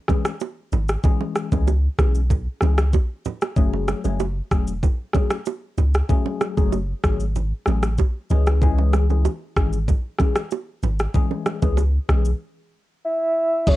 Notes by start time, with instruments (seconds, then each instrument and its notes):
0.08 tine electric piano E3 G#3 C#4 G#4, kick, cross-stick, low bongo, shaker
0.25 cross-stick, shaker
0.40 high bongo, shaker
0.72 sub bass G#1, low conga, shaker
0.89 cross-stick, shaker
1.04 tine electric piano E3 G#3 C#4 G#4, kick, low conga, shaker
1.21 low bongo
1.35 cross-stick, shaker
1.52 sub bass C#2, tine electric piano E3 G#3 C#4 G#4, kick, low bongo, shaker
1.67 high bongo, shaker
1.98 sub bass B1, tine electric piano E3 G#3 C#4 G#4, kick, cross-stick, high bongo, shaker
2.15 shaker
2.30 kick, low conga, shaker
2.61 sub bass C#2, tine electric piano E3 G#3 C#4 G#4, cross-stick, low bongo, shaker
2.78 cross-stick, shaker
2.93 kick, high bongo, shaker
3.25 low conga, shaker
3.42 cross-stick, high bongo, shaker
3.56 sub bass F#1, tine electric piano F#3 A3 C#4 G#4, kick, low conga, shaker
3.73 low bongo
3.88 cross-stick, low bongo, shaker
4.04 sub bass F#1, tine electric piano F#3 A3 C#4 G#4, low bongo, shaker
4.20 high bongo, shaker
4.51 sub bass E1, tine electric piano F#3 A3 C#4 G#4, kick, cross-stick, shaker
4.67 shaker
4.83 kick, low conga, shaker
5.13 tine electric piano F#3 A3 C#4 G#4, kick, cross-stick, low bongo, shaker
5.30 cross-stick, shaker
5.46 high bongo, shaker
5.78 sub bass C#2, low conga, shaker
5.94 cross-stick, shaker
6.09 tine electric piano F#3 A3 C#4 G#4, kick, low conga, shaker
6.26 low bongo
6.41 cross-stick, low bongo, shaker
6.57 sub bass F#1, tine electric piano F#3 A3 C#4 G#4, kick, low bongo, shaker
6.72 high bongo, shaker
7.04 sub bass G#1, tine electric piano F#3 A3 C#4 G#4, kick, cross-stick, shaker
7.20 shaker
7.36 low conga, shaker
7.66 sub bass A1, tine electric piano F#3 A3 C#4 G#4, cross-stick, low bongo, shaker
7.83 cross-stick, shaker
7.98 kick, high bongo, shaker
8.30 sub bass C#2, tine electric piano E3 G#3 C#4 G#4, low conga, shaker
8.47 cross-stick, shaker
8.62 tine electric piano E3 G#3 C#4 G#4, kick, low conga, shaker
8.78 low bongo
8.93 cross-stick, low bongo, shaker
9.10 tine electric piano E3 G#3 C#4 G#4, low bongo, shaker
9.25 high bongo, shaker
9.56 sub bass G#1, tine electric piano E3 G#3 C#4 G#4, kick, cross-stick, shaker
9.73 shaker
9.88 kick, low conga, shaker
10.19 tine electric piano E3 G#3 C#4 G#4, kick, cross-stick, low bongo, shaker
10.36 cross-stick, shaker
10.51 high bongo, shaker
10.83 sub bass G#1, low conga, shaker
10.99 cross-stick, shaker
11.14 tine electric piano E3 G#3 C#4 G#4, kick, low conga, shaker
11.31 low bongo
11.46 cross-stick, low bongo, shaker
11.62 sub bass C#2, tine electric piano E3 G#3 C#4 G#4, kick, low bongo, shaker
11.77 high bongo, shaker
12.09 sub bass B1, tine electric piano E3 G#3 C#4 G#4, kick, cross-stick, shaker
12.25 shaker
13.05 soft synth lead E5
13.67 sub bass F#1, tine electric piano F#3 A3 C#4 G#4, soft synth lead C#5, kick, crash, low conga, shaker